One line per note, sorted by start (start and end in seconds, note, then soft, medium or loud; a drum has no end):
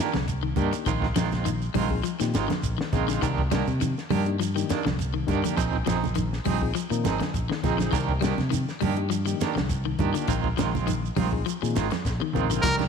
0.00 0.17 D#3 medium
0.00 0.17 A#3 medium
0.00 0.17 D4 medium
0.00 0.18 G4 medium
0.14 0.52 C2 medium
0.14 0.34 D3 medium
0.14 snare medium
0.14 high conga medium
0.14 shekere soft
0.28 kick medium
0.28 closed hi-hat medium
0.28 shekere medium
0.43 0.63 D#3 medium
0.56 0.71 G2 medium
0.56 0.76 D#3 medium
0.56 0.86 A#3 medium
0.56 0.76 A#3 medium
0.56 0.86 D4 medium
0.56 0.76 D4 medium
0.56 0.86 D#4 medium
0.56 0.86 G4 medium
0.56 0.76 G4 medium
0.56 kick medium
0.56 closed hi-hat soft
0.56 low conga medium
0.56 shekere soft
0.73 muted clean electric guitar stroke medium
0.73 closed hi-hat medium
0.73 shekere medium
0.86 1.12 A#1 loud
0.86 1.07 D#3 medium
0.86 1.05 D#3 medium
0.86 1.05 G#3 medium
0.86 1.06 C4 medium
0.86 1.06 F4 medium
0.86 kick medium
0.86 closed hi-hat medium
0.86 shekere medium
1.02 kick medium
1.02 snare soft
1.16 1.68 A#1 medium
1.16 1.32 D#3 medium
1.16 1.36 F3 medium
1.16 1.32 G#3 medium
1.16 1.31 C4 medium
1.16 1.31 F4 medium
1.16 snare medium
1.16 closed hi-hat medium
1.16 high conga medium
1.16 shekere medium
1.32 1.50 G#3 soft
1.32 1.49 C4 soft
1.32 1.49 F4 soft
1.32 snare soft
1.32 low conga medium
1.32 shekere soft
1.45 1.66 D#3 medium
1.45 closed hi-hat medium
1.45 shekere medium
1.62 shekere soft
1.74 2.01 A#1 medium
1.74 1.93 D#3 medium
1.74 1.95 G3 medium
1.74 1.94 G#3 medium
1.74 1.94 C4 medium
1.74 1.94 F4 medium
1.74 open hi-hat medium
1.74 high conga medium
1.74 low conga medium
1.90 2.00 C4 medium
1.90 2.00 D#4 medium
1.90 2.00 F4 medium
1.90 2.00 G#4 medium
1.90 kick medium
2.03 2.15 F3 medium
2.03 closed hi-hat medium
2.03 shekere medium
2.20 2.32 A#2 medium
2.20 2.40 D#3 medium
2.20 2.45 C4 medium
2.20 2.45 D#4 medium
2.20 2.45 F4 medium
2.20 2.45 G4 medium
2.20 snare soft
2.20 shekere medium
2.34 2.48 G#1 medium
2.34 2.52 D#3 medium
2.34 2.53 G#3 medium
2.34 2.53 C4 medium
2.34 2.53 F4 medium
2.34 snare medium
2.34 closed hi-hat soft
2.34 high conga medium
2.34 shekere medium
2.48 2.69 D3 medium
2.48 snare medium
2.48 closed hi-hat soft
2.48 high conga medium
2.48 shekere soft
2.63 2.77 A#1 medium
2.63 kick medium
2.63 closed hi-hat medium
2.63 shekere medium
2.78 2.99 D#3 medium
2.78 snare medium
2.93 3.18 A#1 medium
2.93 3.08 D#3 medium
2.93 3.08 G#3 medium
2.93 3.22 C4 medium
2.93 3.08 C4 medium
2.93 3.23 D#4 medium
2.93 3.23 F4 medium
2.93 3.07 F4 medium
2.93 3.23 G#4 medium
2.93 kick medium
2.93 snare soft
2.93 closed hi-hat soft
2.93 low conga medium
2.93 shekere soft
3.08 3.18 D3 medium
3.08 3.22 G#3 soft
3.08 3.23 C4 soft
3.08 3.22 F4 medium
3.08 snare soft
3.08 shekere medium
3.22 3.62 C2 medium
3.22 3.42 D#3 medium
3.22 3.41 D#3 medium
3.22 3.41 A#3 medium
3.22 3.41 D4 medium
3.22 3.41 G4 medium
3.22 kick medium
3.22 closed hi-hat medium
3.22 shekere medium
3.38 kick medium
3.51 3.70 D#3 medium
3.51 3.72 G3 medium
3.51 3.70 A#3 medium
3.51 3.70 D4 medium
3.51 3.71 G4 medium
3.51 snare medium
3.51 closed hi-hat soft
3.51 high conga medium
3.51 shekere medium
3.67 3.93 C3 medium
3.67 low conga medium
3.67 shekere soft
3.81 4.01 D#3 medium
3.81 closed hi-hat medium
3.81 high conga medium
3.81 shekere medium
3.98 snare soft
3.98 shekere soft
4.10 4.62 G2 medium
4.10 4.29 D#3 medium
4.10 4.31 G3 medium
4.10 4.29 A#3 medium
4.10 4.29 D4 medium
4.10 4.29 G4 medium
4.10 open hi-hat medium
4.10 high conga medium
4.10 low conga medium
4.26 4.35 A#3 medium
4.26 4.35 D4 medium
4.26 4.35 D#4 medium
4.26 4.35 G4 medium
4.26 closed hi-hat soft
4.40 4.50 F3 medium
4.40 closed hi-hat medium
4.40 shekere medium
4.55 4.76 D#3 medium
4.55 4.80 A#3 medium
4.55 4.80 D4 medium
4.55 4.80 D#4 medium
4.55 4.80 G4 medium
4.55 shekere medium
4.69 4.88 D#3 medium
4.69 4.88 A#3 medium
4.69 4.88 D4 medium
4.69 muted fingered electric bass stroke soft
4.69 snare medium
4.69 closed hi-hat medium
4.69 high conga medium
4.69 shekere medium
4.85 5.23 C2 medium
4.85 5.05 D3 medium
4.85 snare medium
4.85 high conga medium
4.85 shekere soft
4.99 kick medium
4.99 closed hi-hat medium
4.99 shekere medium
5.14 5.34 D#3 medium
5.27 5.42 G2 medium
5.27 5.44 D#3 medium
5.27 5.57 A#3 medium
5.27 5.44 A#3 medium
5.27 5.57 D4 medium
5.27 5.43 D4 medium
5.27 5.57 D#4 medium
5.27 5.57 G4 medium
5.27 5.43 G4 medium
5.27 kick medium
5.27 closed hi-hat soft
5.27 low conga medium
5.27 shekere soft
5.44 5.53 D3 medium
5.44 5.57 A#3 soft
5.44 5.57 G4 medium
5.44 closed hi-hat medium
5.44 high conga medium
5.44 shekere medium
5.57 5.84 A#1 loud
5.57 5.76 F3 medium
5.57 5.76 C4 medium
5.57 5.76 D#4 medium
5.57 5.76 G#4 medium
5.57 muted clean electric guitar stroke medium
5.57 kick medium
5.57 closed hi-hat medium
5.57 shekere medium
5.73 kick medium
5.86 6.38 A#1 medium
5.86 6.07 F3 medium
5.86 6.05 F3 medium
5.86 6.06 C4 medium
5.86 6.05 D#4 medium
5.86 6.06 G#4 medium
5.86 snare medium
5.86 closed hi-hat soft
5.86 high conga medium
5.86 shekere medium
6.04 high conga medium
6.04 low conga medium
6.04 shekere soft
6.15 6.36 D#3 medium
6.15 closed hi-hat medium
6.15 high conga medium
6.15 shekere medium
6.33 snare soft
6.33 shekere soft
6.44 6.71 A#1 medium
6.44 6.64 F3 medium
6.44 6.66 G3 medium
6.44 6.64 C4 medium
6.44 6.64 D#4 medium
6.44 6.64 G#4 medium
6.44 open hi-hat medium
6.44 high conga medium
6.44 low conga medium
6.61 6.71 C4 medium
6.61 6.71 D#4 medium
6.61 6.71 F4 medium
6.61 6.71 G#4 medium
6.61 kick medium
6.75 6.86 F3 medium
6.75 closed hi-hat medium
6.75 shekere medium
6.90 7.03 A#2 medium
6.90 7.11 D#3 medium
6.90 7.15 C4 medium
6.90 7.15 D#4 medium
6.90 7.15 F4 medium
6.90 7.16 A#4 medium
6.90 shekere medium
7.04 7.18 G#1 medium
7.04 7.23 F3 medium
7.04 7.23 C4 medium
7.04 7.23 D#4 medium
7.04 7.23 G#4 medium
7.04 snare medium
7.04 closed hi-hat soft
7.04 high conga medium
7.04 shekere medium
7.20 7.40 D3 medium
7.20 snare medium
7.20 closed hi-hat soft
7.20 high conga medium
7.20 shekere soft
7.34 7.48 A#1 medium
7.34 kick medium
7.34 closed hi-hat medium
7.34 shekere medium
7.49 7.70 D#3 medium
7.49 snare medium
7.63 7.89 A#1 medium
7.63 7.79 F3 medium
7.63 7.93 C4 medium
7.63 7.78 C4 medium
7.63 7.93 D#4 medium
7.63 7.78 D#4 medium
7.63 7.93 F4 medium
7.63 7.93 G#4 medium
7.63 7.77 G#4 medium
7.63 kick medium
7.63 snare soft
7.63 closed hi-hat soft
7.63 low conga medium
7.63 shekere soft
7.78 7.88 D3 medium
7.78 7.93 D#4 medium
7.78 7.93 G#4 soft
7.78 snare soft
7.78 high conga medium
7.78 shekere medium
7.91 8.32 C2 loud
7.91 8.12 D#3 medium
7.91 8.11 D#3 medium
7.91 8.11 A#3 medium
7.91 8.12 D4 medium
7.91 8.12 G4 medium
7.91 kick medium
7.91 closed hi-hat medium
7.91 shekere medium
8.09 kick medium
8.21 8.41 D#3 medium
8.21 8.42 G3 medium
8.21 8.41 A#3 medium
8.21 8.41 D4 medium
8.21 8.41 G4 medium
8.21 snare medium
8.21 closed hi-hat soft
8.21 high conga medium
8.21 shekere medium
8.38 8.64 C3 medium
8.38 snare soft
8.38 high conga medium
8.38 low conga medium
8.38 shekere soft
8.50 8.71 D#3 medium
8.50 closed hi-hat medium
8.50 high conga medium
8.50 shekere medium
8.69 snare soft
8.69 shekere soft
8.81 9.33 G2 medium
8.81 9.00 D#3 medium
8.81 9.01 G3 medium
8.81 9.00 A#3 medium
8.81 9.00 D4 medium
8.81 9.00 G4 medium
8.81 open hi-hat medium
8.81 high conga medium
8.81 low conga medium
8.96 9.06 A#3 medium
8.96 9.06 D4 medium
8.96 9.06 D#4 medium
8.96 9.07 G4 medium
8.96 closed hi-hat soft
9.10 9.21 F3 medium
9.10 closed hi-hat medium
9.10 shekere medium
9.26 9.46 D#3 medium
9.26 9.51 A#3 medium
9.26 9.51 D4 medium
9.26 9.51 D#4 medium
9.26 9.51 G4 medium
9.26 shekere medium
9.41 9.59 D#3 medium
9.41 9.59 A#3 medium
9.41 9.59 D4 medium
9.41 9.59 G4 medium
9.41 muted fingered electric bass stroke soft
9.41 snare medium
9.41 closed hi-hat soft
9.41 high conga medium
9.41 shekere medium
9.55 9.94 C2 medium
9.55 9.76 D3 medium
9.55 snare medium
9.55 high conga medium
9.55 shekere soft
9.69 kick medium
9.69 closed hi-hat medium
9.69 shekere medium
9.85 10.06 D#3 medium
9.99 10.13 G2 medium
9.99 10.15 D#3 medium
9.99 10.28 A#3 medium
9.99 10.28 D4 medium
9.99 10.14 D4 medium
9.99 10.28 D#4 medium
9.99 10.29 F4 medium
9.99 10.13 G4 medium
9.99 kick medium
9.99 closed hi-hat soft
9.99 low conga medium
9.99 shekere soft
10.14 10.24 D3 medium
10.14 10.28 A#3 soft
10.14 10.28 D4 soft
10.14 closed hi-hat medium
10.14 shekere medium
10.28 10.54 A#1 loud
10.28 10.49 D#3 medium
10.28 10.47 D#3 medium
10.28 10.47 G#3 medium
10.28 10.47 C4 medium
10.28 10.47 F4 medium
10.28 kick medium
10.28 closed hi-hat medium
10.28 shekere medium
10.44 kick medium
10.57 11.10 A#1 medium
10.57 10.73 D#3 medium
10.57 10.78 F3 medium
10.57 10.74 G#3 medium
10.57 10.73 C4 medium
10.57 10.73 F4 medium
10.57 snare medium
10.57 closed hi-hat medium
10.57 high conga medium
10.57 shekere medium
10.74 10.91 G#3 soft
10.74 10.91 C4 soft
10.74 10.91 F4 soft
10.74 high conga medium
10.74 low conga medium
10.74 shekere soft
10.87 11.07 D#3 medium
10.87 closed hi-hat medium
10.87 high conga medium
10.87 shekere medium
11.05 shekere soft
11.16 11.43 A#1 medium
11.16 11.35 D#3 medium
11.16 11.37 G3 medium
11.16 11.35 G#3 medium
11.16 11.36 C4 medium
11.16 11.36 F4 medium
11.16 open hi-hat medium
11.16 high conga medium
11.16 low conga medium
11.32 11.41 C4 medium
11.32 11.41 D#4 medium
11.32 11.42 F4 medium
11.32 11.42 G#4 medium
11.32 kick medium
11.46 11.57 F3 medium
11.46 closed hi-hat medium
11.46 shekere medium
11.62 11.74 A#2 medium
11.62 11.82 D#3 medium
11.62 11.87 C4 medium
11.62 11.87 D#4 medium
11.62 11.87 F4 medium
11.62 11.87 G#4 medium
11.62 shekere medium
11.75 11.89 G#1 medium
11.75 11.94 D#3 medium
11.75 11.94 G#3 medium
11.75 11.94 C4 medium
11.75 11.94 F4 medium
11.75 snare medium
11.75 closed hi-hat medium
11.75 high conga medium
11.75 shekere medium
11.91 muted clean electric guitar stroke medium
11.91 snare medium
11.91 closed hi-hat soft
11.91 high conga medium
11.91 shekere soft
12.05 12.19 A#1 medium
12.05 kick medium
12.05 snare soft
12.05 shekere medium
12.20 12.41 D#3 medium
12.20 high tom soft
12.33 12.60 A#1 medium
12.33 12.50 D#3 medium
12.33 12.50 G#3 medium
12.33 12.64 C4 medium
12.33 12.50 C4 medium
12.33 12.64 D#4 medium
12.33 12.64 F4 medium
12.33 12.49 F4 medium
12.33 12.64 A#4 medium
12.33 mid tom medium
12.33 low conga medium
12.33 shekere soft
12.50 12.60 D3 medium
12.50 12.64 F4 soft
12.50 floor tom medium
12.50 shekere medium
12.62 12.88 C2 loud
12.62 12.83 D#3 medium
12.62 12.84 F3 medium
12.62 12.83 A#3 medium
12.62 12.83 D4 medium
12.62 12.83 G4 medium
12.62 12.76 A#4 loud
12.62 kick medium
12.62 closed hi-hat medium
12.62 low conga medium
12.62 shekere medium
12.79 snare soft
12.79 closed hi-hat soft
12.79 high conga medium